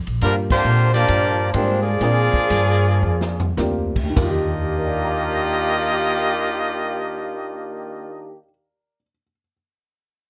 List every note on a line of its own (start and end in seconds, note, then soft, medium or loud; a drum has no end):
0.07 0.21 A#1 medium
0.07 ride medium
0.21 0.64 G2 medium
0.21 0.35 D3 medium
0.21 0.36 F3 medium
0.21 0.48 G3 medium
0.21 0.35 G3 medium
0.21 0.35 A#3 medium
0.21 0.48 A#3 medium
0.21 0.48 D4 medium
0.21 0.36 D4 medium
0.21 0.35 F4 medium
0.21 0.48 F4 medium
0.21 0.48 G4 medium
0.21 0.35 A#4 loud
0.21 kick soft
0.21 ride medium
0.50 0.92 D3 loud
0.50 0.92 F3 medium
0.50 0.92 A#3 loud
0.50 0.92 C4 loud
0.50 0.92 F4 loud
0.50 0.91 G4 loud
0.50 0.92 C5 loud
0.50 kick loud
0.50 crash medium
0.64 1.07 A#2 loud
0.64 hi-hat pedal medium
0.93 1.50 F3 loud
0.93 1.50 A#3 loud
0.93 1.51 D4 loud
0.93 1.50 F4 loud
0.93 1.50 G4 loud
0.93 1.50 D5 loud
0.93 snare soft
0.93 ride medium
1.08 1.53 G2 medium
1.08 kick soft
1.08 ride medium
1.52 2.00 G#2 medium
1.52 1.82 G3 medium
1.52 1.82 G#3 medium
1.52 1.82 A#3 medium
1.52 1.83 C4 medium
1.52 1.82 D4 medium
1.52 1.82 F4 medium
1.52 1.83 G4 medium
1.52 1.82 C5 medium
1.52 kick soft
1.52 hi-hat pedal medium
1.52 ride medium
1.82 3.52 F3 loud
1.82 3.52 A#3 loud
1.82 3.52 D4 medium
1.82 3.52 F4 loud
1.82 3.52 G#4 loud
1.82 3.52 G#4 medium
1.82 3.51 D5 loud
2.01 2.31 A#2 medium
2.01 2.30 A#3 medium
2.01 2.30 C4 medium
2.01 2.30 D4 medium
2.01 2.31 F4 medium
2.01 2.31 G#4 medium
2.01 kick soft
2.01 snare soft
2.01 ride medium
2.34 muted upright bass stroke soft
2.34 kick medium
2.50 3.00 G2 loud
2.50 kick soft
2.50 hi-hat pedal medium
2.50 ride medium
3.02 3.55 F2 medium
3.21 snare medium
3.40 floor tom medium
3.57 4.14 D2 loud
3.57 3.92 A#3 medium
3.57 3.92 C4 medium
3.57 3.92 D4 medium
3.57 3.92 F4 medium
3.57 3.93 G4 medium
3.57 snare medium
3.57 hi-hat pedal medium
3.96 kick medium
3.96 crash medium
4.03 8.25 D#2 medium
4.10 8.32 D#3 medium
4.16 8.34 D#2 medium
4.16 8.35 D#3 medium
4.16 8.38 A#3 medium
4.16 8.34 A#3 loud
4.16 8.35 A#3 loud
4.16 8.35 D4 medium
4.16 8.34 F4 loud
4.16 8.35 G4 medium
4.16 8.36 G4 medium
4.16 8.34 D#5 loud
4.16 kick loud
4.16 floor tom loud
4.16 splash medium
4.22 8.44 F4 medium
4.28 8.50 G4 medium
4.77 8.95 A#4 soft
4.85 9.03 D5 soft
4.93 9.11 F5 soft
5.03 9.21 A#5 soft
5.12 9.30 D6 soft
5.23 9.41 F6 soft
5.35 9.53 A#6 soft